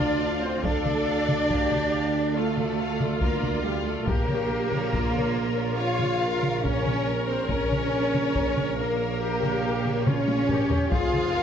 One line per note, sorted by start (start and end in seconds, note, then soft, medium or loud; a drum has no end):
0.00 0.59 D2 medium
0.00 0.60 D2 medium
0.00 0.41 D4 medium
0.00 0.64 F4 medium
0.00 0.41 D5 medium
0.00 0.44 D5 medium
0.00 0.21 D5 medium
0.00 impact medium
0.22 0.43 F5 medium
0.42 0.64 C4 medium
0.42 0.63 C5 medium
0.42 0.66 C5 medium
0.42 0.65 D5 medium
0.63 4.02 D2 medium
0.63 3.91 D2 medium
0.63 2.35 D4 loud
0.63 2.35 D4 medium
0.63 1.50 A4 medium
0.63 2.35 D5 medium
0.63 2.37 D5 medium
0.63 0.84 F5 medium
0.63 taiko medium
0.86 1.07 D5 medium
0.86 taiko mid soft
1.07 1.28 F5 medium
1.28 1.50 D5 medium
1.28 taiko mid medium
1.49 2.35 G4 medium
1.49 1.69 F5 medium
1.49 taiko medium
1.71 1.92 D5 medium
1.71 taiko mid soft
1.92 2.13 F5 medium
2.15 2.35 D5 soft
2.35 3.21 A3 medium
2.35 2.77 F4 medium
2.35 3.21 A4 medium
2.35 3.24 A4 medium
2.35 2.55 F5 medium
2.56 2.78 D5 soft
2.56 taiko mid soft
2.78 4.04 F4 medium
2.78 3.00 F5 medium
3.00 3.21 D5 soft
3.00 taiko mid medium
3.20 3.63 A#3 medium
3.20 3.63 A#4 medium
3.20 3.64 A#4 medium
3.20 3.41 F5 medium
3.20 taiko medium
3.40 3.63 D5 soft
3.40 taiko mid soft
3.63 3.85 G3 medium
3.63 3.85 G4 medium
3.63 3.85 F5 medium
3.85 4.07 A3 medium
3.85 4.08 A4 medium
3.85 4.07 A4 medium
3.85 4.07 D5 medium
4.06 7.45 A#1 medium
4.06 7.46 A#1 medium
4.06 5.78 A#3 medium
4.06 5.74 A#3 medium
4.06 4.92 G4 medium
4.06 4.26 A#4 medium
4.06 5.50 A#4 medium
4.06 5.75 A#4 medium
4.06 taiko medium
4.29 4.50 C#5 medium
4.29 taiko mid soft
4.50 4.71 A#4 medium
4.72 4.93 C#5 medium
4.72 taiko mid medium
4.93 5.78 F4 medium
4.93 5.13 A#4 medium
4.93 taiko medium
5.15 5.35 C#5 medium
5.15 taiko mid soft
5.35 5.56 A#4 medium
5.55 5.77 C#5 soft
5.78 6.64 F4 medium
5.78 6.47 F4 medium
5.78 5.98 A#4 medium
5.78 6.21 C#5 medium
5.78 6.63 F5 medium
5.78 6.65 F5 medium
6.00 6.21 C#5 soft
6.00 taiko mid soft
6.21 6.42 A#4 medium
6.21 9.21 A#4 medium
6.42 6.63 C#5 soft
6.42 taiko mid soft
6.63 7.28 C#4 medium
6.63 7.27 C#4 medium
6.63 6.83 A#4 medium
6.63 7.28 C#5 medium
6.63 7.27 C#5 medium
6.63 taiko medium
6.85 7.06 C#5 soft
6.85 taiko mid soft
7.07 7.28 A#4 medium
7.27 7.49 C4 medium
7.27 7.50 C5 medium
7.27 7.49 C5 medium
7.27 7.49 C#5 soft
7.48 10.88 A#1 medium
7.48 10.76 A#1 medium
7.48 8.77 C#4 medium
7.48 8.75 C#4 medium
7.48 7.70 A#4 medium
7.48 8.79 C#5 medium
7.48 8.76 C#5 medium
7.48 taiko medium
7.72 7.93 C#5 medium
7.72 taiko mid soft
7.93 8.14 A#4 soft
8.14 8.35 C#5 medium
8.14 taiko mid soft
8.35 8.55 A#4 medium
8.35 taiko medium
8.57 8.78 C#5 medium
8.57 taiko mid soft
8.77 10.04 A#3 medium
8.77 10.07 A#3 medium
8.77 10.05 A#4 medium
8.77 10.06 A#4 medium
8.77 9.00 A#4 medium
9.01 9.21 C#5 soft
9.21 10.05 G4 medium
9.21 9.41 A#4 medium
9.43 9.64 C#5 medium
9.43 taiko mid soft
9.65 9.86 A#4 medium
9.85 10.07 C#5 soft
9.85 taiko mid soft
10.05 10.91 C#4 medium
10.05 10.92 C#4 medium
10.05 10.49 F4 medium
10.05 10.27 A#4 medium
10.05 10.91 C#5 medium
10.05 10.93 C#5 medium
10.05 taiko mid medium
10.28 10.50 C#5 medium
10.28 taiko high medium
10.49 10.92 G4 medium
10.49 10.71 A#4 medium
10.49 taiko low-mid medium
10.70 10.92 C#5 medium
10.70 taiko low medium
10.91 11.43 F1 medium
10.91 11.43 F2 medium
10.91 11.43 F4 medium
10.91 11.35 G#4 medium
10.91 11.12 G#4 medium
10.91 11.43 F5 medium
10.91 taiko medium
11.13 11.35 C5 medium
11.13 taiko mid soft
11.35 11.43 G#4 medium
11.35 11.43 A#4 medium